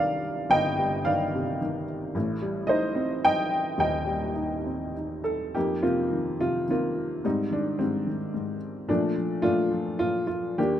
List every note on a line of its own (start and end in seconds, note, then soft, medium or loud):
0.00 0.47 C2 medium
0.00 0.19 G2 soft
0.00 0.75 C3 medium
0.00 1.06 D#3 medium
0.00 2.16 A#4 medium
0.00 1.06 D5 medium
0.00 0.48 F5 medium
0.50 2.10 G1 medium
0.50 1.04 D#5 medium
0.50 1.09 G5 loud
0.78 1.84 G2 medium
1.05 1.60 D#3 medium
1.05 1.57 D5 medium
1.05 1.56 F5 medium
1.35 2.13 C3 medium
1.62 2.14 D#3 medium
2.15 3.75 A1 medium
2.15 3.74 A2 medium
2.42 3.48 G3 medium
2.67 3.22 D#4 medium
2.67 3.20 C5 medium
2.67 3.19 D#5 medium
2.95 4.02 C4 medium
3.24 4.31 D#4 medium
3.24 3.75 D#5 medium
3.24 3.78 G5 loud
3.78 5.51 D#1 medium
3.78 5.51 D#2 medium
3.78 4.92 D#5 medium
3.78 4.92 G5 medium
4.06 5.22 G3 soft
4.35 4.95 D#4 medium
4.65 5.53 C4 soft
4.96 5.54 D#4 soft
5.24 5.52 A4 medium
5.55 7.21 F2 medium
5.55 5.81 A#3 medium
5.55 6.37 D#4 medium
5.55 5.82 G4 medium
5.82 6.38 C3 soft
5.82 6.64 A#3 medium
5.82 6.64 C4 medium
5.82 6.39 F4 medium
6.11 6.67 D#3 soft
6.40 7.22 C3 soft
6.40 6.69 F4 medium
6.68 7.22 D#3 soft
6.68 7.22 A#3 medium
6.68 7.21 C4 medium
6.68 7.21 F4 medium
7.24 7.78 G#2 medium
7.24 7.78 G3 medium
7.24 7.77 C4 medium
7.24 7.53 D#4 medium
7.51 7.77 D#3 soft
7.51 7.80 D4 medium
7.79 8.32 G#2 soft
7.79 8.05 D#3 soft
7.79 8.57 G3 soft
7.79 8.57 C4 medium
8.07 8.87 D#3 medium
8.34 8.87 G#2 soft
8.88 9.42 A#2 medium
8.88 9.14 F3 medium
8.88 9.42 A3 medium
8.88 9.42 D4 medium
9.16 9.70 F3 soft
9.42 9.99 A#2 medium
9.42 10.24 A3 medium
9.42 10.24 D4 medium
9.42 9.95 F4 medium
9.71 10.55 F3 medium
9.99 10.57 A#2 soft
9.99 10.26 F4 medium
10.27 10.58 F4 medium
10.58 10.80 D#2 medium
10.58 10.80 A#3 medium
10.58 10.80 D4 medium
10.58 10.80 G4 medium